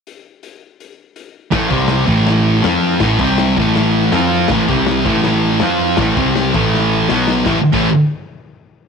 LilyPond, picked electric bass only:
\new Staff \with { instrumentName = "Picked electric bass" } { \clef bass \time 4/4 \key a \minor \tempo 4 = 162 r1 | a,,8 c,4 a,,4. f,4 | a,,8 c,4 a,,4. f,4 | a,,8 c,4 a,,4. f,4 |
a,,8 c,4 a,,4. b,,4 | a,,16 r8 a,,8 r2 r8. | }